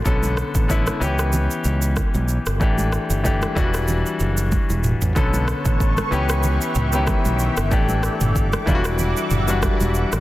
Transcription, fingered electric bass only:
X:1
M:4/4
L:1/16
Q:"Swing 16ths" 1/4=94
K:Bm
V:1 name="Fingered electric bass" clef=bass
B,,,3 A,,,3 C,,4 C,,3 B,,,2 G,,, | A,,,3 G,,,3 E,,,4 F,,,3 E,,,2 A,,, | B,,,3 A,,,3 C,,4 C,,3 B,,,2 G,,, | A,,,3 G,,,3 E,,,4 F,,,3 E,,,2 A,,, |]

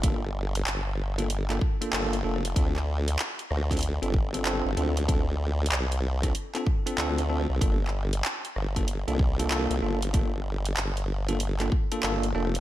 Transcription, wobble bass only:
X:1
M:4/4
L:1/16
Q:"Swing 16ths" 1/4=95
K:Gm
V:1 name="Wobble bass" clef=bass
G,,,4 G,,,6 z2 G,,,2 F,,,2 | D,,4 z2 D,,3 G,,,4 G,,, D,,2- | D,,4 C,,4 z4 D,,3 C,, | G,,,4 z2 G,,,3 C,,4 C,, G,,,2- |
G,,,4 G,,,6 z2 G,,,2 F,,,2 |]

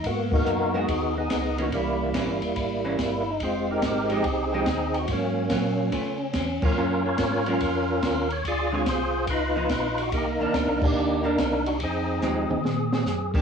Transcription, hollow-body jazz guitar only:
X:1
M:4/4
L:1/8
Q:"Swing" 1/4=143
K:Ablyd
V:1 name="Hollow-body jazz guitar"
z3 [A,_C_GB] z3 [_F,B,_D]- | [_F,B,_D]2 [=E,B,D] z2 [E,B,D] z2 | z3 [F,A,EG] z [F,A,EG] z2 | z2 [_G,_D]2 [=A,_CF] z2 [G,B,DF] |
[_G,B,_DF] z2 [G,B,DF] z4 | z [D,A,CF] z3 [F,_CE] z2 | z [E,B,D] z3 [E,B,D] z2 | z2 [F,A,EG] z4 [E,B,DG] |]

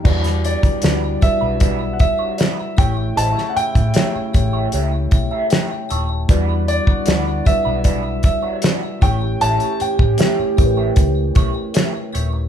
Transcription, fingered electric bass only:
X:1
M:4/4
L:1/16
Q:1/4=77
K:Edor
V:1 name="Fingered electric bass" clef=bass
E,,3 z D,,2 z B,,,4 z3 A,,,2 | A,,, z2 A,, z2 A,,,2 C,,2 B,,, z3 ^D,,,2 | E,,3 z D,,2 z B,,,4 z3 A,,,2 | A,,, z2 A,, z2 A,,,2 C,,2 B,,, z3 ^D,,,2 |]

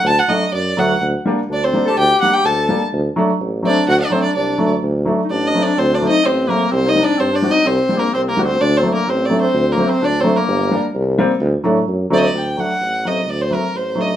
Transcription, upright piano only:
X:1
M:2/4
L:1/16
Q:1/4=127
K:none
V:1 name="Upright piano"
z2 [^F,A,D] z3 [F,A,D] z | z2 [G,_B,D] z3 [G,B,D] z | z2 [G,_B,D] z3 [G,B,D] z | z2 [^F,A,D] z3 [F,A,C] z |
z2 [^F,A,D] z3 [F,A,D] z | z2 [^F,A,D] z3 [F,A,C] z | z2 [^F,A,C] z3 [F,A,C] z | z2 [G,C_E] z3 [G,C^F] z |
z2 [G,CD] z3 [G,C^F] z | z2 [^F,A,D] z3 [F,A,D] z | z2 [^F,A,C] z3 [F,A,D] z | z2 [G,_B,D] z3 [G,B,C] z |
z2 [^F,A,D] z3 [F,A,C] z | z2 [^F,A,D] z3 [F,A,C] z | z2 [^F,A,C] z3 [F,A,D] z |]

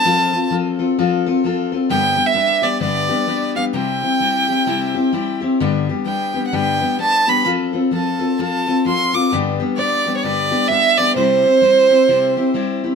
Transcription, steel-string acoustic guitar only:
X:1
M:4/4
L:1/8
Q:"Swing" 1/4=130
K:C
V:1 name="Steel-string acoustic guitar"
[F,CFA] [CFA] [F,CFA] [CFA] [F,CFA] [CFA] [F,CFA] [CFA] | [G,,D,G,B,DG] [G,B,DG] [G,B,DG] [G,B,DG] [G,,D,G,B,DG] [G,B,DG] [G,B,DG] [G,B,DG] | [C,G,CEG] [CEG] [G,CEG] [CEG] [C,G,CEG] [CEG] [G,CEG] [CEG] | [G,,D,G,B,DG] [G,B,DG] [G,B,DG] [G,B,DG] [G,,D,G,B,DG] [G,B,DG] [G,B,DG] [G,B,DG] |
[F,CFA] [CFA] [F,CFA] [CFA] [F,CFA] [CFA] [F,CFA] [CFA] | [G,,D,G,B,DG] [G,B,DG] [G,B,DG] [G,B,DG] [G,,D,G,B,DG] [G,B,DG] [G,B,DG] [G,B,DG] | [C,G,CEG] [CEG] [G,CEG] [CEG] [C,G,CEG] [CEG] [G,CEG] [CEG] |]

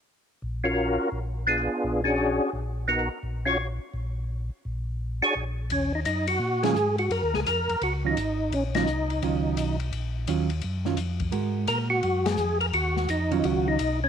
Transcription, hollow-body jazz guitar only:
X:1
M:4/4
L:1/8
Q:"Swing" 1/4=170
K:Ebm
V:1 name="Hollow-body jazz guitar"
z8 | z8 | z8 | z8 |
z4 z [E,G,DF] z2 | z4 z [E,G,DF] z2 | z [E,G,DF] z2 [E,G,DF]3 z | z2 [E,G,DF] z2 [E,G,DF] z2 |
[A,GB]4- [A,GB] z3 | z3 [E,G,DF]3 z2 |]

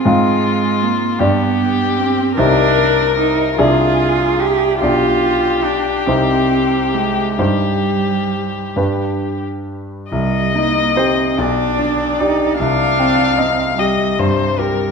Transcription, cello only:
X:1
M:6/8
L:1/8
Q:3/8=49
K:Cm
V:1 name="Cello"
A,2 B, =B,2 C | D2 E F2 G | F2 D C2 A, | G,3 z3 |
G, B, C D2 E | D2 C G,3 |]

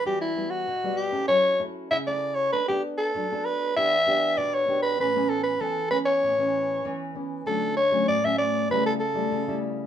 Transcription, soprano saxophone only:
X:1
M:4/4
L:1/16
Q:1/4=97
K:D
V:1 name="Soprano saxophone"
G E2 F3 G2 c2 z2 e d2 c | B G2 A3 B2 e4 d c2 B | B2 A B A2 B c6- c z2 | A2 c2 d e d2 B A A4 z2 |]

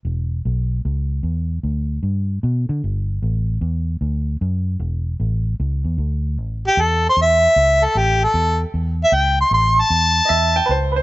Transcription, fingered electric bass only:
X:1
M:4/4
L:1/8
Q:"Swing" 1/4=152
K:Amix
V:1 name="Fingered electric bass" clef=bass
E,,,2 B,,,2 C,,2 E,,2 | D,,2 G,,2 B,, D, G,,,2 | A,,,2 E,,2 D,,2 F,,2 | E,,,2 A,,,2 C,, E,, D,,2 |
A,,,2 E,,2 E,,2 C,,2 | A,,,2 E,,2 E,,2 C,,2 | A,,,2 E,,2 E,,2 C,,2 |]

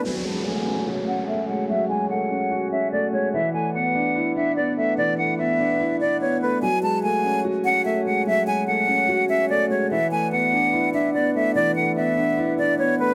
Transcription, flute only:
X:1
M:4/4
L:1/8
Q:1/4=146
K:F#m
V:1 name="Flute"
g a g3 f e f | e g f3 e d c | e g f3 e d e | d f e3 d c B |
g a g3 f e f | e g f3 e d c | e g f3 e d e | d f e3 d c B |]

